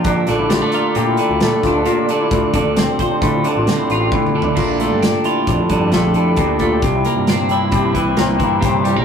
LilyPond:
<<
  \new Staff \with { instrumentName = "Hammered dulcimer" } { \time 5/4 \key bes \lydian \tempo 4 = 133 d'16 a'16 f'16 e'16 f'16 d'16 bes8 g'16 e'8 bes8 d'16 f'16 d'16 f'16 d'8 e'16 | f'8 d'8 c'8 f'16 d'16 e'16 f'16 d'16 f'8 e'16 f'16 c'16 e'16 a'8 d'16 | f'16 e'16 f'16 g'16 f'8 e'8 d'16 e'16 d'16 g'16 f'8 e'16 d'16 g'8 f'16 g'16~ | g'16 e'8 g'8 c'16 d'16 e'16 g'16 e'16 g'16 c'16 c'8 bes8 c'16 d'16 e'16 c'16 | }
  \new Staff \with { instrumentName = "Clean electric guitar" } { \clef bass \time 5/4 \key bes \lydian << { r4 g16 a16 f'4. a8 d'4. | r4 c'8 c''4. c'8 f'4. | r8 a8 d'8 f'4. a4. a8 | r8 bes8 c'8 e'4. bes4. g16 bes16 | } \\ { bes,8 d4. bes,8 d4. bes,8 d8 | d,8 d4. a,8 d4. d,8 d8 | bes,2 f,8 d4 d8 bes,4 | c2 c8 e4 e8 c4 | } >> }
  \new Staff \with { instrumentName = "Picked electric bass" } { \clef bass \time 5/4 \key bes \lydian bes,,16 r16 bes,,16 bes,,8 r8. bes,8 r16 d,16 bes,16 r16 d,8 r4 | d,16 r16 f,16 d,8 r8. d8 r16 a,,16 d16 r16 a,,8 r4 | bes,,8. g,8 r8. bes,,16 r16 g,8 bes,,8 r8 d,4 | c,8 r16 g,4~ g,16 g,8 c,8 c,8 g,4~ g,16 bes,,16 | }
  \new DrumStaff \with { instrumentName = "Drums" } \drummode { \time 5/4 <hh bd>8 <hh sn>8 <hh sn>8 hh8 hh8 hh8 <hh sn>8 <hh bd sn>8 hh8 hh8 | <hh bd>8 <hh bd>8 <hh sn>8 <hh bd>8 <hh bd>8 hh8 <hh sn>8 hh8 \tuplet 3/2 { <bd tommh>8 toml8 tomfh8 } | <cymc bd>8 hh8 <hh sn>8 hh8 <hh bd>8 <hh bd>8 <hh sn>8 hh8 <hh bd>8 <hh bd>8 | <hh bd>8 hh8 <hh sn>8 hh8 <hh bd>8 <hh bd>8 <hh sn>8 <hh bd>8 <hh bd>8 hh8 | }
>>